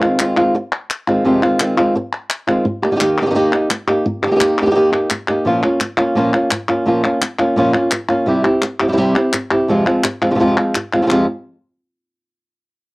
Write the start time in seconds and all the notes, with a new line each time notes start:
0.01 D#3 G#3 C4 F4
0.19 D#3 G#3 C4 F4, clap
0.37 D#3 G#3 C4 F4
0.54 muted nylon-string guitar stroke
0.90 clap
1.07 D#3 G#3 C4 F4
1.25 F2 C3 D#3 G#3 C4 F4
1.42 D#3 G#3 C4 F4
1.60 D#3 G#3 C4 F4, clap
1.77 D#3 G#3 C4 F4
1.95 muted nylon-string guitar stroke
2.30 clap
2.47 D#3 G#3 C4 F4
2.65 muted nylon-string guitar stroke
2.82 A#3 D#4 G4
2.91 D#3 A#3 D#4 G4
2.96 D#3 A#3 D#4 G4
3.00 D#3 A#3 D#4 G4, clap
3.21 D#3 A#3 D#4 G4
3.26 D#3 A#3 D#4 G4
3.31 D#3 A#3 D#4 G4
3.35 D#3 A#3 D#4 G4
3.53 A#3 D#4 G4
3.70 muted nylon-string guitar stroke, clap
3.87 A#3 D#4 G4
4.06 muted nylon-string guitar stroke
4.22 A#3 D#4 G4
4.26 D#3 D#4 G4
4.31 D#3 A#3 D#4 G4
4.35 D#3 A#3 D#4 G4
4.40 D#3 A#3 D#4 G4, clap
4.61 D#3 A#3 D#4 G4
4.66 D#3 A#3 D#4 G4
4.71 D#3 A#3 D#4 G4
4.75 D#3 A#3 D#4 G4
4.92 A#3 D#4 G4
5.10 muted nylon-string guitar stroke, clap
5.28 A#3 D#4 G4
5.45 A#2 F3 A#3 C#4 F4
5.62 A#3 C#4 F4
5.80 muted nylon-string guitar stroke, clap
5.97 A#3 C#4 F4
6.15 A#2 F3 A#3 C#4 F4
6.33 A#3 C#4 F4
6.51 muted nylon-string guitar stroke, clap
6.69 A#3 C#4 F4
6.86 A#2 F3 A#3 C#4 F4
7.03 A#3 C#4 F4
7.21 muted nylon-string guitar stroke, clap
7.39 A#3 C#4 F4
7.56 A#2 F3 A#3 C#4 F4
7.74 A#3 C#4 F4
7.91 muted nylon-string guitar stroke, clap
8.09 A#3 C#4 F4
8.26 C3 G3 C4 E4 G4
8.44 C4 E4 G4
8.62 muted nylon-string guitar stroke, clap
8.80 C4 E4 G4
8.88 G3 C4 E4 G4
8.92 G3 C4 E4 G4
8.97 C3 G3 C4 E4 G4
9.15 C4 E4 G4
9.33 muted nylon-string guitar stroke, clap
9.51 C4 E4 G4
9.68 F2 C3 F3 G#3 C4 F4
9.86 F3 G#3 C4 F4
10.04 muted nylon-string guitar stroke, clap
10.21 F3 G#3 C4 F4
10.30 C3 F3 G#3 C4 F4
10.35 C3 F3 G#3 C4 F4
10.40 F2 C3 F3 G#3 C4 F4
10.57 F3 G#3 C4 F4
10.75 muted nylon-string guitar stroke, clap
10.93 F3 G#3 C4 F4
11.02 C3 F3 G#3 C4 F4
11.06 C3 F3 G#3 C4 F4, clap
11.11 F2 C3 F3 G#3 C4 F4